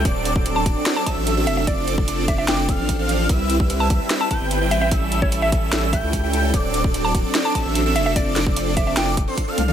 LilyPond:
<<
  \new Staff \with { instrumentName = "Digital synth lead" } { \time 4/4 \key d \dorian \tempo 4 = 148 d'''8. d'''8. d'''8 d'''8 e'''8. e'''8. | d'''8. d'''8. d'''8 d'''8 f'''8. f'''8. | e'''8. e'''8. e'''8 e'''8 g'''8. g'''8. | e'''8. e'''8. e'''8 e'''8 g'''8. g'''8. |
d'''8. d'''8. d'''8 d'''8 e'''8. e'''8. | d'''8. d'''8. d'''8 d'''8 r16 c'''8 f'''16 r16 f'''16 | }
  \new Staff \with { instrumentName = "Synth pluck" } { \time 4/4 \key d \dorian r4 r16 a''16 r8. a''16 a''16 r8. e''16 e''16 | d''16 r4 r16 e''16 e''16 g''4. r8 | r4 r16 a''16 r8. a''16 a''16 r8. e''16 e''16 | r8. cis''16 r16 e''16 r4 e''4. |
r4 r16 a''16 r8. a''16 a''16 r8. e''16 e''16 | d''16 r4 r16 e''16 e''16 g''4. r8 | }
  \new Staff \with { instrumentName = "Supersaw synth" } { \time 4/4 \key d \dorian <fis c' d' a' d''>8. <fis c' d' a' d''>8. <fis c' d' a' d''>8 <fis c' d' a' d''>8 <fis c' d' a' e''>8. <fis c' d' a' e''>8. | <f c' d' a' d''>8. <f c' d' a' d''>8. <f c' d' a' d''>8 <f c' d' a' d''>8 <f c' d' a' f''>8. <f c' d' a' f''>8. | <g c' e' b' e''>8. <g c' e' b' e''>8. <g c' e' b' e''>8 <g c' e' b' e''>8 <g c' e' b' g''>8. <g c' e' b' g''>8. | <g cis' e' a' e''>8. <g cis' e' a' e''>8. <g cis' e' a' e''>8 <g cis' e' a' e''>8 <g cis' e' a' g''>8. <g cis' e' a' g''>8. |
<fis c' d' a' d''>8. <fis c' d' a' d''>8. <fis c' d' a' d''>8 <fis c' d' a' d''>8 <fis c' d' a' e''>8. <fis c' d' a' e''>8. | <f c' d' a' d''>8. <f c' d' a' d''>8. <f c' d' a' d''>8 <f c' d' a' d''>8 r16 <f c' d' a' c''>8 <f c' d' a' f''>16 r16 <f c' d' a' f''>16 | }
  \new Staff \with { instrumentName = "Sub bass" } { \clef bass \time 4/4 \key d \dorian d,,4.~ d,,16 r4 a,,8. f,,8~ | f,,2 f,,8. a,,4~ a,,16 | c,4.~ c,16 r4 g,,8. a,,8~ | a,,2 a,,8. cis,4~ cis,16 |
d,,4.~ d,,16 r4 a,,8. f,,8~ | f,,2 f,,8. r8. c,8 | }
  \new DrumStaff \with { instrumentName = "Drums" } \drummode { \time 4/4 <hh bd>8 hh16 bd16 hh8 <hh bd>8 <hh sn>8 <hh bd>8 hh8 hh8 | <hh bd>8 hh16 bd16 hh8 <hh bd>8 <hh sn>8 <hh bd>8 <hh bd>8 hh8 | <hh bd>8 hh16 bd16 hh8 <hh bd>8 <hh sn>8 <hh bd>8 hh8 hh8 | <hh bd>8 hh16 bd16 hh8 <hh bd>8 <hh sn>8 <hh bd>8 <hh bd>8 hh8 |
<hh bd>8 hh16 bd16 hh8 <hh bd>8 <hh sn>8 <hh bd>8 hh8 hh8 | <hh bd>8 <hh sn>16 bd16 hh8 <hh bd>8 <hh sn>8 <hh bd>8 <hh bd>8 <hh tommh>16 toml16 | }
>>